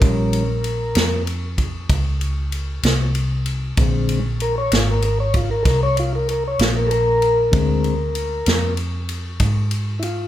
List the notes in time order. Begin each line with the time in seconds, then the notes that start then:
Already playing: A#4
0.01 A#1 F3 G3 C#4, kick, ride
0.33 ride
0.64 ride
0.95 F2, snare, ride
1.27 ride
1.58 kick, ride
1.89 C#2, kick, ride
2.21 ride
2.52 ride
2.83 C2, snare, ride
3.15 ride
3.46 ride
3.77 A#1 D3 G#3 C4, kick, ride
4.09 ride
4.40 A#4, ride
4.58 C#5
4.72 G#1 F4, snare, ride
4.90 A#4
5.02 A#4, ride
5.20 C#5
5.34 F4, kick, ride
5.51 A#4
5.63 C2 A4, kick, ride
5.67 A#4, snare
5.83 C#5
5.97 F4, ride
6.15 A#4
6.29 A#4, ride
6.48 C#5
6.59 A#1 F4, snare, ride
6.76 A#4
6.87 A4
6.91 A#4, ride
7.22 ride
7.52 D2 D3 G#3 C4, kick, ride
7.84 ride
8.15 ride
8.46 F2, snare, ride
8.77 ride
9.09 ride
9.40 G#2, kick, ride
9.71 ride
9.99 E4, ride
10.04 F4